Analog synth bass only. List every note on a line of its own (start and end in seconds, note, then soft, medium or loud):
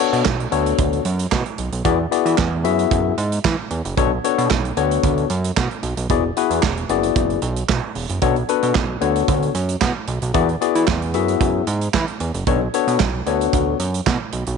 0.13 0.23 B2 loud
0.26 0.47 B1 medium
0.52 0.74 D2 medium
0.79 1.00 D2 medium
1.05 1.27 F#2 medium
1.32 1.43 B2 loud
1.58 1.70 B1 medium
1.73 1.83 B1 medium
1.85 2.06 E2 loud
2.25 2.36 E3 loud
2.38 2.66 E2 loud
2.64 2.86 F#2 medium
2.91 3.13 F#2 medium
3.18 3.39 G#2 loud
3.45 3.56 E3 loud
3.71 3.82 E2 medium
3.85 3.95 F#1 loud
3.98 4.19 B1 loud
4.38 4.48 B2 loud
4.51 4.72 B1 loud
4.77 4.99 D2 medium
5.04 5.25 D2 loud
5.30 5.52 F#2 loud
5.57 5.68 B2 loud
5.83 5.94 B1 medium
5.97 6.07 B1 medium
6.10 6.31 E1 loud
6.50 6.60 E2 loud
6.63 6.85 E1 loud
6.89 7.11 F#1 loud
7.16 7.37 F#1 medium
7.42 7.64 B1 loud
7.69 7.81 B1 medium
7.96 8.07 E1 medium
8.10 8.20 F#1 medium
8.22 8.44 B1 loud
8.63 8.73 B2 loud
8.75 8.97 B1 loud
9.01 9.23 D2 medium
9.28 9.50 D2 loud
9.55 9.76 F#2 loud
9.82 9.93 B2 loud
10.08 10.19 B1 medium
10.22 10.32 B1 loud
10.35 10.56 E2 loud
10.75 10.85 E3 loud
10.88 11.16 E2 loud
11.14 11.36 F#2 medium
11.41 11.62 F#2 medium
11.67 11.89 G#2 loud
11.94 12.05 E3 loud
12.20 12.32 E2 medium
12.34 12.45 F#1 medium
12.47 12.68 B1 loud
12.87 12.97 B2 loud
13.00 13.22 B1 loud
13.26 13.48 D2 loud
13.53 13.75 D2 medium
13.80 14.01 F#2 loud
14.07 14.18 B2 loud
14.33 14.44 B1 medium
14.47 14.57 B1 medium